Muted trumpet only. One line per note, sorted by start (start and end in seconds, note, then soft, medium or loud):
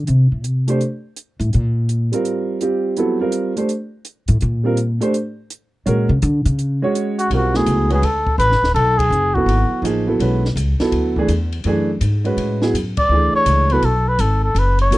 7.19 7.30 F#4 medium
7.35 7.58 F#4 medium
7.56 7.91 G#4 medium
7.93 8.06 G#4 medium
8.05 8.38 A4 medium
8.39 8.72 B4 loud
8.74 8.99 A4 loud
8.98 9.36 G#4 medium
9.34 9.83 F#4 medium
12.98 13.32 D5 medium
13.35 13.74 C#5 loud
13.72 13.87 B4 medium
13.85 14.10 A4 medium
14.08 14.22 B4 medium
14.20 14.43 A4 medium
14.44 14.60 A4 medium
14.58 14.80 B4 medium
14.81 14.98 C#5 medium